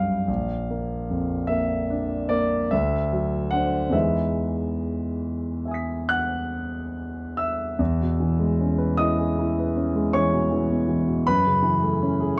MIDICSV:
0, 0, Header, 1, 2, 480
1, 0, Start_track
1, 0, Tempo, 810811
1, 166, Time_signature, 9, 3, 24, 8
1, 2566, Tempo, 855920
1, 3046, Tempo, 914634
1, 3526, Tempo, 845070
1, 4486, Tempo, 780234
1, 5926, Tempo, 742574
1, 7388, End_track
2, 0, Start_track
2, 0, Title_t, "Grand piano"
2, 0, Program_c, 0, 0
2, 0, Control_c, 0, 64, 127
2, 0, Note_on_c, 0, 36, 42
2, 0, Note_on_c, 0, 42, 23
2, 0, Note_on_c, 0, 43, 30
2, 0, Note_on_c, 0, 55, 29
2, 0, Note_on_c, 0, 64, 32
2, 0, Note_on_c, 0, 77, 65
2, 0, Note_on_c, 0, 79, 70
2, 138, Note_off_c, 0, 36, 0
2, 162, Note_on_c, 0, 34, 42
2, 166, Note_off_c, 0, 43, 0
2, 176, Control_c, 0, 64, 0
2, 177, Note_off_c, 0, 55, 0
2, 177, Note_off_c, 0, 64, 0
2, 178, Note_off_c, 0, 42, 0
2, 182, Note_off_c, 0, 79, 0
2, 277, Control_c, 0, 64, 127
2, 415, Note_on_c, 0, 58, 30
2, 649, Note_on_c, 0, 41, 35
2, 795, Note_off_c, 0, 58, 0
2, 872, Note_on_c, 0, 76, 72
2, 878, Note_off_c, 0, 77, 0
2, 883, Note_on_c, 0, 58, 35
2, 1030, Note_off_c, 0, 41, 0
2, 1125, Note_on_c, 0, 62, 39
2, 1266, Note_off_c, 0, 58, 0
2, 1355, Note_off_c, 0, 76, 0
2, 1355, Note_on_c, 0, 74, 77
2, 1364, Note_on_c, 0, 58, 40
2, 1507, Note_off_c, 0, 62, 0
2, 1578, Note_off_c, 0, 34, 0
2, 1599, Note_off_c, 0, 74, 0
2, 1604, Note_off_c, 0, 58, 0
2, 1604, Note_on_c, 0, 76, 76
2, 1614, Control_c, 0, 64, 0
2, 1614, Note_on_c, 0, 38, 50
2, 1738, Control_c, 0, 64, 127
2, 1852, Note_on_c, 0, 54, 37
2, 2075, Note_on_c, 0, 78, 75
2, 2086, Note_off_c, 0, 76, 0
2, 2090, Note_on_c, 0, 62, 33
2, 2091, Note_on_c, 0, 72, 37
2, 2232, Note_off_c, 0, 54, 0
2, 2304, Note_off_c, 0, 62, 0
2, 2304, Note_off_c, 0, 72, 0
2, 2306, Note_on_c, 0, 40, 40
2, 2309, Note_off_c, 0, 38, 0
2, 2311, Note_on_c, 0, 52, 30
2, 2318, Note_on_c, 0, 63, 32
2, 2319, Note_on_c, 0, 56, 31
2, 2320, Note_off_c, 0, 78, 0
2, 2325, Note_on_c, 0, 76, 64
2, 2329, Note_on_c, 0, 71, 31
2, 2336, Control_c, 0, 64, 0
2, 2451, Control_c, 0, 64, 127
2, 3281, Note_off_c, 0, 76, 0
2, 3289, Note_on_c, 0, 76, 26
2, 3302, Note_on_c, 0, 80, 28
2, 3320, Note_on_c, 0, 87, 29
2, 3336, Note_on_c, 0, 95, 26
2, 3517, Note_on_c, 0, 90, 74
2, 3524, Note_on_c, 0, 78, 52
2, 4231, Note_off_c, 0, 78, 0
2, 4246, Note_off_c, 0, 76, 0
2, 4246, Note_on_c, 0, 88, 65
2, 4250, Note_off_c, 0, 90, 0
2, 4255, Note_on_c, 0, 76, 51
2, 4454, Note_off_c, 0, 40, 0
2, 4456, Note_off_c, 0, 52, 0
2, 4460, Note_off_c, 0, 63, 0
2, 4461, Note_off_c, 0, 56, 0
2, 4465, Note_off_c, 0, 71, 0
2, 4471, Note_off_c, 0, 80, 0
2, 4481, Note_off_c, 0, 87, 0
2, 4482, Note_on_c, 0, 40, 52
2, 4489, Note_off_c, 0, 95, 0
2, 4496, Control_c, 0, 64, 0
2, 4609, Control_c, 0, 64, 127
2, 4618, Note_on_c, 0, 47, 34
2, 4735, Note_on_c, 0, 52, 36
2, 4812, Note_off_c, 0, 47, 0
2, 4854, Note_on_c, 0, 56, 34
2, 4932, Note_off_c, 0, 52, 0
2, 4983, Note_on_c, 0, 61, 34
2, 5052, Note_off_c, 0, 56, 0
2, 5092, Note_on_c, 0, 71, 39
2, 5174, Note_off_c, 0, 61, 0
2, 5196, Note_off_c, 0, 76, 0
2, 5212, Note_on_c, 0, 87, 75
2, 5216, Note_off_c, 0, 88, 0
2, 5218, Note_on_c, 0, 75, 51
2, 5221, Note_on_c, 0, 64, 38
2, 5287, Note_off_c, 0, 71, 0
2, 5340, Note_on_c, 0, 68, 38
2, 5410, Note_off_c, 0, 64, 0
2, 5465, Note_on_c, 0, 64, 43
2, 5528, Note_off_c, 0, 68, 0
2, 5593, Note_on_c, 0, 71, 36
2, 5649, Note_off_c, 0, 64, 0
2, 5698, Note_on_c, 0, 61, 41
2, 5773, Note_off_c, 0, 71, 0
2, 5813, Note_on_c, 0, 56, 39
2, 5883, Note_off_c, 0, 61, 0
2, 5901, Note_off_c, 0, 75, 0
2, 5922, Note_off_c, 0, 87, 0
2, 5925, Note_on_c, 0, 73, 59
2, 5925, Note_on_c, 0, 85, 75
2, 5934, Note_on_c, 0, 52, 39
2, 6001, Note_off_c, 0, 56, 0
2, 6048, Note_on_c, 0, 47, 36
2, 6124, Note_off_c, 0, 52, 0
2, 6168, Note_on_c, 0, 52, 40
2, 6240, Note_off_c, 0, 47, 0
2, 6290, Note_on_c, 0, 47, 33
2, 6360, Note_off_c, 0, 52, 0
2, 6408, Note_on_c, 0, 52, 38
2, 6481, Note_off_c, 0, 47, 0
2, 6531, Note_on_c, 0, 47, 33
2, 6601, Note_off_c, 0, 52, 0
2, 6621, Note_off_c, 0, 40, 0
2, 6623, Note_off_c, 0, 73, 0
2, 6648, Note_off_c, 0, 85, 0
2, 6650, Note_off_c, 0, 47, 0
2, 6657, Note_on_c, 0, 83, 85
2, 6659, Note_on_c, 0, 71, 64
2, 6662, Control_c, 0, 64, 0
2, 6666, Note_on_c, 0, 42, 51
2, 6753, Control_c, 0, 64, 127
2, 6785, Note_on_c, 0, 49, 40
2, 6888, Note_on_c, 0, 52, 40
2, 6970, Note_off_c, 0, 49, 0
2, 7019, Note_on_c, 0, 57, 44
2, 7080, Note_off_c, 0, 52, 0
2, 7146, Note_on_c, 0, 61, 41
2, 7204, Note_off_c, 0, 57, 0
2, 7261, Note_on_c, 0, 68, 44
2, 7328, Note_off_c, 0, 61, 0
2, 7346, Note_off_c, 0, 71, 0
2, 7371, Note_off_c, 0, 83, 0
2, 7388, Note_off_c, 0, 42, 0
2, 7388, Note_off_c, 0, 68, 0
2, 7388, End_track
0, 0, End_of_file